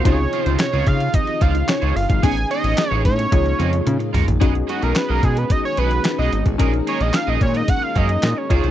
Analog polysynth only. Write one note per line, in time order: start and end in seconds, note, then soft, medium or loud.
0.04 2.19 C3 medium
0.04 2.19 D#4 medium
0.04 2.19 F4 medium
0.04 0.12 F#4 medium
0.12 2.23 G#4 medium
2.23 3.30 B3 medium
2.23 3.30 C#4 medium
2.23 3.31 D#4 medium
2.23 3.31 G#4 medium
3.31 4.39 A#3 medium
3.31 4.39 D#4 medium
3.31 4.39 F4 medium
3.31 4.39 G#4 medium
4.40 6.55 C#4 medium
4.40 6.55 D#4 medium
4.40 6.56 F#4 medium
4.40 6.56 G#4 loud
6.58 8.46 C#4 medium
6.58 8.46 D#4 medium
6.58 8.47 G#4 medium
6.58 8.47 A#4 medium
8.49 8.71 D#4 medium
8.49 8.71 F4 medium
8.49 8.71 G#4 medium
8.49 8.71 C#5 medium